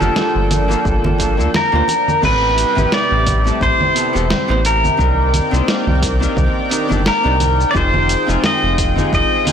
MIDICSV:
0, 0, Header, 1, 6, 480
1, 0, Start_track
1, 0, Tempo, 689655
1, 1554, Time_signature, 4, 2, 24, 8
1, 6627, End_track
2, 0, Start_track
2, 0, Title_t, "Pedal steel guitar"
2, 0, Program_c, 0, 26
2, 0, Note_on_c, 0, 69, 90
2, 1051, Note_off_c, 0, 69, 0
2, 1087, Note_on_c, 0, 70, 82
2, 1533, Note_off_c, 0, 70, 0
2, 1565, Note_on_c, 0, 71, 91
2, 2045, Note_on_c, 0, 74, 83
2, 2054, Note_off_c, 0, 71, 0
2, 2520, Note_off_c, 0, 74, 0
2, 2523, Note_on_c, 0, 72, 84
2, 3244, Note_on_c, 0, 70, 82
2, 3260, Note_off_c, 0, 72, 0
2, 4917, Note_off_c, 0, 70, 0
2, 4925, Note_on_c, 0, 70, 95
2, 5364, Note_on_c, 0, 74, 80
2, 5370, Note_off_c, 0, 70, 0
2, 5400, Note_off_c, 0, 74, 0
2, 5407, Note_on_c, 0, 72, 101
2, 5883, Note_off_c, 0, 72, 0
2, 5886, Note_on_c, 0, 75, 97
2, 6358, Note_off_c, 0, 75, 0
2, 6366, Note_on_c, 0, 75, 99
2, 6627, Note_off_c, 0, 75, 0
2, 6627, End_track
3, 0, Start_track
3, 0, Title_t, "Hollow-body jazz guitar"
3, 0, Program_c, 1, 26
3, 0, Note_on_c, 1, 58, 85
3, 2, Note_on_c, 1, 62, 83
3, 7, Note_on_c, 1, 65, 84
3, 13, Note_on_c, 1, 67, 81
3, 20, Note_on_c, 1, 69, 94
3, 450, Note_off_c, 1, 58, 0
3, 453, Note_off_c, 1, 62, 0
3, 456, Note_off_c, 1, 65, 0
3, 459, Note_off_c, 1, 67, 0
3, 462, Note_off_c, 1, 69, 0
3, 474, Note_on_c, 1, 58, 81
3, 481, Note_on_c, 1, 62, 73
3, 487, Note_on_c, 1, 65, 78
3, 491, Note_on_c, 1, 67, 79
3, 494, Note_off_c, 1, 67, 0
3, 497, Note_on_c, 1, 69, 89
3, 801, Note_off_c, 1, 58, 0
3, 805, Note_off_c, 1, 62, 0
3, 808, Note_off_c, 1, 65, 0
3, 813, Note_off_c, 1, 69, 0
3, 823, Note_on_c, 1, 58, 75
3, 830, Note_on_c, 1, 62, 73
3, 834, Note_on_c, 1, 65, 65
3, 839, Note_on_c, 1, 67, 70
3, 843, Note_off_c, 1, 67, 0
3, 846, Note_on_c, 1, 69, 81
3, 943, Note_off_c, 1, 58, 0
3, 946, Note_off_c, 1, 62, 0
3, 949, Note_off_c, 1, 65, 0
3, 954, Note_off_c, 1, 69, 0
3, 956, Note_on_c, 1, 58, 84
3, 962, Note_on_c, 1, 62, 77
3, 968, Note_on_c, 1, 65, 74
3, 973, Note_on_c, 1, 67, 79
3, 977, Note_off_c, 1, 67, 0
3, 980, Note_on_c, 1, 69, 98
3, 1031, Note_off_c, 1, 58, 0
3, 1034, Note_off_c, 1, 62, 0
3, 1037, Note_off_c, 1, 65, 0
3, 1043, Note_off_c, 1, 69, 0
3, 1197, Note_on_c, 1, 58, 89
3, 1203, Note_on_c, 1, 62, 78
3, 1208, Note_on_c, 1, 65, 82
3, 1213, Note_on_c, 1, 67, 79
3, 1220, Note_on_c, 1, 72, 96
3, 1272, Note_off_c, 1, 58, 0
3, 1275, Note_off_c, 1, 62, 0
3, 1277, Note_off_c, 1, 65, 0
3, 1280, Note_off_c, 1, 67, 0
3, 1283, Note_off_c, 1, 72, 0
3, 1539, Note_on_c, 1, 59, 77
3, 1545, Note_on_c, 1, 60, 69
3, 1551, Note_on_c, 1, 64, 69
3, 1556, Note_on_c, 1, 67, 72
3, 1559, Note_off_c, 1, 67, 0
3, 1562, Note_on_c, 1, 69, 85
3, 1889, Note_off_c, 1, 59, 0
3, 1892, Note_off_c, 1, 60, 0
3, 1895, Note_off_c, 1, 64, 0
3, 1900, Note_off_c, 1, 69, 0
3, 1915, Note_on_c, 1, 59, 87
3, 1921, Note_on_c, 1, 60, 75
3, 1927, Note_on_c, 1, 64, 83
3, 1932, Note_on_c, 1, 67, 81
3, 1938, Note_on_c, 1, 71, 94
3, 2370, Note_off_c, 1, 59, 0
3, 2372, Note_off_c, 1, 60, 0
3, 2376, Note_off_c, 1, 64, 0
3, 2378, Note_off_c, 1, 67, 0
3, 2381, Note_off_c, 1, 71, 0
3, 2396, Note_on_c, 1, 57, 83
3, 2402, Note_on_c, 1, 60, 78
3, 2408, Note_on_c, 1, 64, 81
3, 2413, Note_on_c, 1, 67, 81
3, 2419, Note_on_c, 1, 69, 90
3, 2722, Note_off_c, 1, 57, 0
3, 2725, Note_off_c, 1, 60, 0
3, 2728, Note_off_c, 1, 64, 0
3, 2731, Note_off_c, 1, 67, 0
3, 2734, Note_off_c, 1, 69, 0
3, 2742, Note_on_c, 1, 59, 73
3, 2747, Note_on_c, 1, 60, 72
3, 2752, Note_on_c, 1, 64, 68
3, 2758, Note_on_c, 1, 67, 70
3, 2762, Note_off_c, 1, 64, 0
3, 2765, Note_on_c, 1, 69, 80
3, 2862, Note_off_c, 1, 59, 0
3, 2865, Note_off_c, 1, 60, 0
3, 2870, Note_off_c, 1, 67, 0
3, 2874, Note_off_c, 1, 69, 0
3, 2876, Note_on_c, 1, 59, 86
3, 2880, Note_on_c, 1, 60, 78
3, 2886, Note_on_c, 1, 64, 78
3, 2892, Note_on_c, 1, 67, 81
3, 2895, Note_off_c, 1, 64, 0
3, 2897, Note_on_c, 1, 69, 97
3, 2951, Note_off_c, 1, 59, 0
3, 2953, Note_off_c, 1, 60, 0
3, 2959, Note_off_c, 1, 67, 0
3, 2962, Note_off_c, 1, 69, 0
3, 3118, Note_on_c, 1, 59, 86
3, 3123, Note_on_c, 1, 60, 83
3, 3128, Note_on_c, 1, 64, 81
3, 3134, Note_on_c, 1, 67, 82
3, 3137, Note_off_c, 1, 64, 0
3, 3140, Note_on_c, 1, 72, 103
3, 3192, Note_off_c, 1, 59, 0
3, 3195, Note_off_c, 1, 60, 0
3, 3200, Note_off_c, 1, 67, 0
3, 3203, Note_off_c, 1, 72, 0
3, 3461, Note_on_c, 1, 60, 77
3, 3467, Note_on_c, 1, 62, 72
3, 3471, Note_on_c, 1, 63, 65
3, 3477, Note_on_c, 1, 67, 68
3, 3484, Note_on_c, 1, 70, 84
3, 3810, Note_off_c, 1, 60, 0
3, 3813, Note_off_c, 1, 62, 0
3, 3815, Note_off_c, 1, 63, 0
3, 3818, Note_off_c, 1, 67, 0
3, 3821, Note_off_c, 1, 70, 0
3, 3835, Note_on_c, 1, 60, 91
3, 3841, Note_on_c, 1, 62, 80
3, 3847, Note_on_c, 1, 63, 81
3, 3852, Note_on_c, 1, 67, 82
3, 3859, Note_on_c, 1, 72, 97
3, 4290, Note_off_c, 1, 60, 0
3, 4293, Note_off_c, 1, 62, 0
3, 4296, Note_off_c, 1, 63, 0
3, 4298, Note_off_c, 1, 67, 0
3, 4301, Note_off_c, 1, 72, 0
3, 4315, Note_on_c, 1, 60, 85
3, 4321, Note_on_c, 1, 62, 78
3, 4327, Note_on_c, 1, 63, 79
3, 4333, Note_on_c, 1, 67, 78
3, 4339, Note_on_c, 1, 70, 92
3, 4642, Note_off_c, 1, 60, 0
3, 4645, Note_off_c, 1, 62, 0
3, 4648, Note_off_c, 1, 63, 0
3, 4651, Note_off_c, 1, 67, 0
3, 4654, Note_off_c, 1, 70, 0
3, 4660, Note_on_c, 1, 60, 76
3, 4667, Note_on_c, 1, 62, 66
3, 4672, Note_on_c, 1, 63, 72
3, 4678, Note_on_c, 1, 67, 67
3, 4683, Note_on_c, 1, 70, 83
3, 4782, Note_off_c, 1, 60, 0
3, 4785, Note_off_c, 1, 62, 0
3, 4788, Note_off_c, 1, 63, 0
3, 4790, Note_off_c, 1, 67, 0
3, 4793, Note_off_c, 1, 70, 0
3, 4793, Note_on_c, 1, 60, 87
3, 4798, Note_on_c, 1, 62, 82
3, 4804, Note_on_c, 1, 63, 78
3, 4810, Note_on_c, 1, 67, 81
3, 4816, Note_on_c, 1, 69, 94
3, 4870, Note_off_c, 1, 60, 0
3, 4873, Note_off_c, 1, 62, 0
3, 4875, Note_off_c, 1, 63, 0
3, 4878, Note_off_c, 1, 67, 0
3, 4881, Note_off_c, 1, 69, 0
3, 5034, Note_on_c, 1, 60, 90
3, 5040, Note_on_c, 1, 62, 83
3, 5045, Note_on_c, 1, 63, 84
3, 5052, Note_on_c, 1, 67, 81
3, 5057, Note_on_c, 1, 74, 97
3, 5110, Note_off_c, 1, 60, 0
3, 5113, Note_off_c, 1, 62, 0
3, 5116, Note_off_c, 1, 63, 0
3, 5119, Note_off_c, 1, 67, 0
3, 5122, Note_off_c, 1, 74, 0
3, 5379, Note_on_c, 1, 60, 79
3, 5384, Note_on_c, 1, 63, 71
3, 5390, Note_on_c, 1, 65, 70
3, 5396, Note_on_c, 1, 67, 71
3, 5400, Note_on_c, 1, 68, 88
3, 5729, Note_off_c, 1, 60, 0
3, 5731, Note_off_c, 1, 63, 0
3, 5734, Note_off_c, 1, 65, 0
3, 5737, Note_off_c, 1, 67, 0
3, 5739, Note_off_c, 1, 68, 0
3, 5752, Note_on_c, 1, 60, 88
3, 5759, Note_on_c, 1, 63, 82
3, 5764, Note_on_c, 1, 65, 85
3, 5770, Note_on_c, 1, 67, 79
3, 5776, Note_on_c, 1, 68, 94
3, 6208, Note_off_c, 1, 60, 0
3, 6211, Note_off_c, 1, 63, 0
3, 6214, Note_off_c, 1, 65, 0
3, 6217, Note_off_c, 1, 67, 0
3, 6220, Note_off_c, 1, 68, 0
3, 6234, Note_on_c, 1, 60, 83
3, 6240, Note_on_c, 1, 63, 76
3, 6245, Note_on_c, 1, 65, 75
3, 6251, Note_on_c, 1, 67, 74
3, 6256, Note_on_c, 1, 68, 90
3, 6561, Note_off_c, 1, 60, 0
3, 6564, Note_off_c, 1, 63, 0
3, 6567, Note_off_c, 1, 65, 0
3, 6570, Note_off_c, 1, 67, 0
3, 6572, Note_off_c, 1, 68, 0
3, 6578, Note_on_c, 1, 60, 77
3, 6584, Note_on_c, 1, 63, 71
3, 6591, Note_on_c, 1, 65, 73
3, 6596, Note_on_c, 1, 67, 65
3, 6599, Note_off_c, 1, 67, 0
3, 6602, Note_on_c, 1, 68, 86
3, 6627, Note_off_c, 1, 60, 0
3, 6627, Note_off_c, 1, 63, 0
3, 6627, Note_off_c, 1, 65, 0
3, 6627, Note_off_c, 1, 68, 0
3, 6627, End_track
4, 0, Start_track
4, 0, Title_t, "Analog synth pad"
4, 0, Program_c, 2, 89
4, 0, Note_on_c, 2, 53, 83
4, 0, Note_on_c, 2, 58, 76
4, 0, Note_on_c, 2, 62, 76
4, 0, Note_on_c, 2, 79, 90
4, 1526, Note_off_c, 2, 53, 0
4, 1526, Note_off_c, 2, 79, 0
4, 1534, Note_off_c, 2, 58, 0
4, 1534, Note_off_c, 2, 62, 0
4, 1552, Note_on_c, 2, 64, 75
4, 1553, Note_on_c, 2, 79, 95
4, 1554, Note_on_c, 2, 48, 79
4, 1554, Note_on_c, 2, 55, 74
4, 3454, Note_off_c, 2, 64, 0
4, 3455, Note_off_c, 2, 48, 0
4, 3455, Note_off_c, 2, 55, 0
4, 3474, Note_on_c, 2, 60, 71
4, 3475, Note_on_c, 2, 51, 85
4, 3476, Note_on_c, 2, 58, 74
4, 3477, Note_on_c, 2, 74, 76
4, 5376, Note_off_c, 2, 58, 0
4, 5376, Note_off_c, 2, 74, 0
4, 5393, Note_on_c, 2, 56, 73
4, 5393, Note_on_c, 2, 65, 78
4, 6627, Note_off_c, 2, 51, 0
4, 6627, Note_off_c, 2, 56, 0
4, 6627, Note_off_c, 2, 60, 0
4, 6627, Note_off_c, 2, 65, 0
4, 6627, Note_off_c, 2, 79, 0
4, 6627, End_track
5, 0, Start_track
5, 0, Title_t, "Analog synth bass"
5, 0, Program_c, 3, 38
5, 6, Note_on_c, 3, 31, 101
5, 72, Note_off_c, 3, 31, 0
5, 246, Note_on_c, 3, 31, 94
5, 527, Note_off_c, 3, 31, 0
5, 593, Note_on_c, 3, 31, 89
5, 966, Note_on_c, 3, 38, 106
5, 976, Note_off_c, 3, 31, 0
5, 1031, Note_off_c, 3, 38, 0
5, 1207, Note_on_c, 3, 38, 83
5, 1272, Note_off_c, 3, 38, 0
5, 1553, Note_on_c, 3, 33, 97
5, 1844, Note_off_c, 3, 33, 0
5, 1930, Note_on_c, 3, 33, 95
5, 1994, Note_off_c, 3, 33, 0
5, 2168, Note_on_c, 3, 33, 88
5, 2448, Note_off_c, 3, 33, 0
5, 2514, Note_on_c, 3, 33, 82
5, 2596, Note_off_c, 3, 33, 0
5, 2890, Note_on_c, 3, 28, 88
5, 3024, Note_off_c, 3, 28, 0
5, 3129, Note_on_c, 3, 33, 89
5, 3408, Note_off_c, 3, 33, 0
5, 3473, Note_on_c, 3, 36, 101
5, 3764, Note_off_c, 3, 36, 0
5, 3848, Note_on_c, 3, 36, 97
5, 3912, Note_off_c, 3, 36, 0
5, 4088, Note_on_c, 3, 36, 88
5, 4368, Note_off_c, 3, 36, 0
5, 4433, Note_on_c, 3, 36, 87
5, 4515, Note_off_c, 3, 36, 0
5, 4808, Note_on_c, 3, 31, 91
5, 4943, Note_off_c, 3, 31, 0
5, 5048, Note_on_c, 3, 36, 92
5, 5328, Note_off_c, 3, 36, 0
5, 5392, Note_on_c, 3, 29, 94
5, 5683, Note_off_c, 3, 29, 0
5, 5768, Note_on_c, 3, 29, 101
5, 5832, Note_off_c, 3, 29, 0
5, 6007, Note_on_c, 3, 29, 84
5, 6287, Note_off_c, 3, 29, 0
5, 6353, Note_on_c, 3, 29, 82
5, 6436, Note_off_c, 3, 29, 0
5, 6627, End_track
6, 0, Start_track
6, 0, Title_t, "Drums"
6, 6, Note_on_c, 9, 64, 81
6, 11, Note_on_c, 9, 82, 41
6, 75, Note_off_c, 9, 64, 0
6, 81, Note_off_c, 9, 82, 0
6, 112, Note_on_c, 9, 38, 91
6, 115, Note_on_c, 9, 62, 87
6, 118, Note_on_c, 9, 82, 30
6, 182, Note_off_c, 9, 38, 0
6, 184, Note_off_c, 9, 62, 0
6, 188, Note_off_c, 9, 82, 0
6, 353, Note_on_c, 9, 42, 85
6, 353, Note_on_c, 9, 64, 75
6, 359, Note_on_c, 9, 82, 66
6, 423, Note_off_c, 9, 42, 0
6, 423, Note_off_c, 9, 64, 0
6, 429, Note_off_c, 9, 82, 0
6, 485, Note_on_c, 9, 62, 47
6, 495, Note_on_c, 9, 82, 43
6, 554, Note_off_c, 9, 62, 0
6, 565, Note_off_c, 9, 82, 0
6, 593, Note_on_c, 9, 36, 118
6, 600, Note_on_c, 9, 82, 29
6, 663, Note_off_c, 9, 36, 0
6, 670, Note_off_c, 9, 82, 0
6, 726, Note_on_c, 9, 62, 79
6, 728, Note_on_c, 9, 63, 47
6, 729, Note_on_c, 9, 64, 80
6, 795, Note_off_c, 9, 62, 0
6, 798, Note_off_c, 9, 63, 0
6, 799, Note_off_c, 9, 64, 0
6, 833, Note_on_c, 9, 36, 55
6, 834, Note_on_c, 9, 42, 90
6, 839, Note_on_c, 9, 82, 76
6, 903, Note_off_c, 9, 36, 0
6, 903, Note_off_c, 9, 42, 0
6, 909, Note_off_c, 9, 82, 0
6, 976, Note_on_c, 9, 82, 40
6, 1045, Note_off_c, 9, 82, 0
6, 1072, Note_on_c, 9, 62, 55
6, 1074, Note_on_c, 9, 38, 90
6, 1074, Note_on_c, 9, 64, 74
6, 1080, Note_on_c, 9, 82, 32
6, 1141, Note_off_c, 9, 62, 0
6, 1144, Note_off_c, 9, 38, 0
6, 1144, Note_off_c, 9, 64, 0
6, 1150, Note_off_c, 9, 82, 0
6, 1308, Note_on_c, 9, 62, 80
6, 1314, Note_on_c, 9, 42, 82
6, 1320, Note_on_c, 9, 82, 68
6, 1377, Note_off_c, 9, 62, 0
6, 1384, Note_off_c, 9, 42, 0
6, 1389, Note_off_c, 9, 82, 0
6, 1449, Note_on_c, 9, 64, 74
6, 1454, Note_on_c, 9, 82, 41
6, 1518, Note_off_c, 9, 64, 0
6, 1524, Note_off_c, 9, 82, 0
6, 1553, Note_on_c, 9, 36, 113
6, 1555, Note_on_c, 9, 49, 100
6, 1555, Note_on_c, 9, 64, 76
6, 1561, Note_on_c, 9, 82, 34
6, 1623, Note_off_c, 9, 36, 0
6, 1625, Note_off_c, 9, 49, 0
6, 1625, Note_off_c, 9, 64, 0
6, 1631, Note_off_c, 9, 82, 0
6, 1794, Note_on_c, 9, 42, 93
6, 1800, Note_on_c, 9, 82, 76
6, 1864, Note_off_c, 9, 42, 0
6, 1870, Note_off_c, 9, 82, 0
6, 1928, Note_on_c, 9, 64, 82
6, 1934, Note_on_c, 9, 82, 45
6, 1998, Note_off_c, 9, 64, 0
6, 2003, Note_off_c, 9, 82, 0
6, 2034, Note_on_c, 9, 38, 94
6, 2039, Note_on_c, 9, 82, 33
6, 2104, Note_off_c, 9, 38, 0
6, 2109, Note_off_c, 9, 82, 0
6, 2273, Note_on_c, 9, 36, 109
6, 2273, Note_on_c, 9, 42, 86
6, 2273, Note_on_c, 9, 64, 75
6, 2278, Note_on_c, 9, 82, 72
6, 2342, Note_off_c, 9, 42, 0
6, 2342, Note_off_c, 9, 64, 0
6, 2343, Note_off_c, 9, 36, 0
6, 2348, Note_off_c, 9, 82, 0
6, 2414, Note_on_c, 9, 82, 48
6, 2484, Note_off_c, 9, 82, 0
6, 2514, Note_on_c, 9, 36, 124
6, 2521, Note_on_c, 9, 82, 30
6, 2583, Note_off_c, 9, 36, 0
6, 2591, Note_off_c, 9, 82, 0
6, 2650, Note_on_c, 9, 64, 79
6, 2719, Note_off_c, 9, 64, 0
6, 2755, Note_on_c, 9, 42, 97
6, 2761, Note_on_c, 9, 82, 78
6, 2825, Note_off_c, 9, 42, 0
6, 2830, Note_off_c, 9, 82, 0
6, 2895, Note_on_c, 9, 82, 42
6, 2965, Note_off_c, 9, 82, 0
6, 2996, Note_on_c, 9, 38, 98
6, 2996, Note_on_c, 9, 64, 71
6, 3001, Note_on_c, 9, 82, 31
6, 3065, Note_off_c, 9, 38, 0
6, 3065, Note_off_c, 9, 64, 0
6, 3071, Note_off_c, 9, 82, 0
6, 3235, Note_on_c, 9, 42, 88
6, 3241, Note_on_c, 9, 82, 76
6, 3305, Note_off_c, 9, 42, 0
6, 3310, Note_off_c, 9, 82, 0
6, 3369, Note_on_c, 9, 64, 73
6, 3375, Note_on_c, 9, 82, 46
6, 3439, Note_off_c, 9, 64, 0
6, 3445, Note_off_c, 9, 82, 0
6, 3474, Note_on_c, 9, 36, 116
6, 3480, Note_on_c, 9, 82, 36
6, 3543, Note_off_c, 9, 36, 0
6, 3550, Note_off_c, 9, 82, 0
6, 3715, Note_on_c, 9, 42, 85
6, 3715, Note_on_c, 9, 64, 69
6, 3720, Note_on_c, 9, 82, 76
6, 3784, Note_off_c, 9, 42, 0
6, 3784, Note_off_c, 9, 64, 0
6, 3790, Note_off_c, 9, 82, 0
6, 3855, Note_on_c, 9, 82, 46
6, 3925, Note_off_c, 9, 82, 0
6, 3955, Note_on_c, 9, 38, 102
6, 3961, Note_on_c, 9, 82, 33
6, 4025, Note_off_c, 9, 38, 0
6, 4030, Note_off_c, 9, 82, 0
6, 4088, Note_on_c, 9, 64, 69
6, 4158, Note_off_c, 9, 64, 0
6, 4193, Note_on_c, 9, 36, 114
6, 4194, Note_on_c, 9, 42, 88
6, 4200, Note_on_c, 9, 82, 79
6, 4262, Note_off_c, 9, 36, 0
6, 4264, Note_off_c, 9, 42, 0
6, 4269, Note_off_c, 9, 82, 0
6, 4333, Note_on_c, 9, 82, 50
6, 4403, Note_off_c, 9, 82, 0
6, 4432, Note_on_c, 9, 64, 77
6, 4433, Note_on_c, 9, 36, 123
6, 4438, Note_on_c, 9, 82, 34
6, 4502, Note_off_c, 9, 36, 0
6, 4502, Note_off_c, 9, 64, 0
6, 4507, Note_off_c, 9, 82, 0
6, 4672, Note_on_c, 9, 42, 89
6, 4678, Note_on_c, 9, 82, 81
6, 4742, Note_off_c, 9, 42, 0
6, 4748, Note_off_c, 9, 82, 0
6, 4807, Note_on_c, 9, 64, 74
6, 4813, Note_on_c, 9, 82, 44
6, 4877, Note_off_c, 9, 64, 0
6, 4883, Note_off_c, 9, 82, 0
6, 4913, Note_on_c, 9, 38, 106
6, 4919, Note_on_c, 9, 82, 34
6, 4983, Note_off_c, 9, 38, 0
6, 4989, Note_off_c, 9, 82, 0
6, 5152, Note_on_c, 9, 42, 85
6, 5152, Note_on_c, 9, 64, 75
6, 5158, Note_on_c, 9, 82, 71
6, 5222, Note_off_c, 9, 42, 0
6, 5222, Note_off_c, 9, 64, 0
6, 5227, Note_off_c, 9, 82, 0
6, 5293, Note_on_c, 9, 82, 43
6, 5363, Note_off_c, 9, 82, 0
6, 5392, Note_on_c, 9, 36, 125
6, 5398, Note_on_c, 9, 82, 37
6, 5462, Note_off_c, 9, 36, 0
6, 5468, Note_off_c, 9, 82, 0
6, 5526, Note_on_c, 9, 64, 77
6, 5596, Note_off_c, 9, 64, 0
6, 5632, Note_on_c, 9, 42, 82
6, 5638, Note_on_c, 9, 82, 75
6, 5702, Note_off_c, 9, 42, 0
6, 5707, Note_off_c, 9, 82, 0
6, 5772, Note_on_c, 9, 82, 49
6, 5842, Note_off_c, 9, 82, 0
6, 5872, Note_on_c, 9, 38, 104
6, 5872, Note_on_c, 9, 64, 72
6, 5877, Note_on_c, 9, 82, 33
6, 5941, Note_off_c, 9, 38, 0
6, 5941, Note_off_c, 9, 64, 0
6, 5947, Note_off_c, 9, 82, 0
6, 6112, Note_on_c, 9, 36, 118
6, 6112, Note_on_c, 9, 42, 84
6, 6118, Note_on_c, 9, 82, 78
6, 6182, Note_off_c, 9, 36, 0
6, 6182, Note_off_c, 9, 42, 0
6, 6187, Note_off_c, 9, 82, 0
6, 6247, Note_on_c, 9, 64, 78
6, 6252, Note_on_c, 9, 82, 48
6, 6316, Note_off_c, 9, 64, 0
6, 6322, Note_off_c, 9, 82, 0
6, 6353, Note_on_c, 9, 36, 123
6, 6357, Note_on_c, 9, 82, 35
6, 6422, Note_off_c, 9, 36, 0
6, 6427, Note_off_c, 9, 82, 0
6, 6590, Note_on_c, 9, 42, 84
6, 6590, Note_on_c, 9, 64, 73
6, 6596, Note_on_c, 9, 82, 81
6, 6627, Note_off_c, 9, 42, 0
6, 6627, Note_off_c, 9, 64, 0
6, 6627, Note_off_c, 9, 82, 0
6, 6627, End_track
0, 0, End_of_file